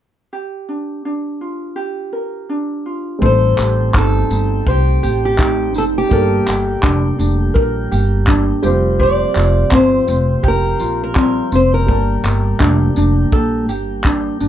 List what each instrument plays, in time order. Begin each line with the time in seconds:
0.33 ukulele G4
0.69 ukulele D4
1.05 ukulele D4
1.41 ukulele F4
1.76 ukulele G4
2.13 ukulele A#4
2.49 ukulele D4
2.86 ukulele F4
3.19 upright bass A1, upright piano G3 C4 D#4, tonewheel organ A3 C4 G4, ukulele A4 C5, kick
3.23 upright piano A4, steel-string acoustic guitar C5
3.58 upright bass A1, ukulele G4, clap, tambourine
3.94 upright bass G1, ukulele D#4, steel-string acoustic guitar A4, kick, clap
4.30 upright bass G1, ukulele D#4, tambourine
4.66 upright bass C2, steel-string acoustic guitar G4, ukulele C5, kick
5.03 upright bass A1, ukulele G4, tambourine
5.25 steel-string acoustic guitar G4
5.38 ukulele D#4, kick, clap
5.74 upright bass F1, ukulele D#4, steel-string acoustic guitar A4, tambourine
5.98 steel-string acoustic guitar G4
6.09 upright bass G1, upright piano G3 A#3 D4, tonewheel organ G3 A#3 G4, ukulele A4 A#4, kick
6.13 upright piano A4
6.46 upright bass G1, ukulele G4, clap, tambourine
6.83 upright bass F1, ukulele D4, kick, clap
7.19 upright bass F1, ukulele D4, tambourine
7.54 upright bass A#1, ukulele A#4, kick
7.91 upright bass G1, ukulele G4, tambourine
8.27 ukulele D4, kick, clap
8.62 upright bass F1, tonewheel organ F3 C4, upright piano G3 C4 F4 C5, ukulele G4, tambourine
8.99 ukulele G4 C5, steel-string acoustic guitar D5, kick
9.35 upright bass F1, ukulele F4, clap, tambourine
9.71 upright bass G1, ukulele C4, steel-string acoustic guitar C5, kick, clap
10.07 upright bass F1, ukulele C4, tambourine
10.43 upright bass F1, ukulele G4, kick
10.48 steel-string acoustic guitar A#4
10.80 upright bass A#1, ukulele F4, tambourine
11.04 steel-string acoustic guitar A#4
11.15 upright piano G3 C4 F4 D5, ukulele C4, kick, clap
11.52 upright bass F1, ukulele C4, steel-string acoustic guitar C5, tambourine
11.74 steel-string acoustic guitar A#4
11.87 upright bass G1, upright piano G3 A#3 D4 A5, tonewheel organ G3 A#3, ukulele A#4, kick
12.24 upright bass G1, ukulele G4, clap, tambourine
12.59 upright bass F1, ukulele D4, kick, clap
12.96 upright bass F1, ukulele D4, tambourine
13.32 upright bass A#1, ukulele A4, kick
13.69 upright bass G1, ukulele G4, tambourine
14.04 ukulele D4, kick, clap
14.40 upright bass G1, ukulele D4, tambourine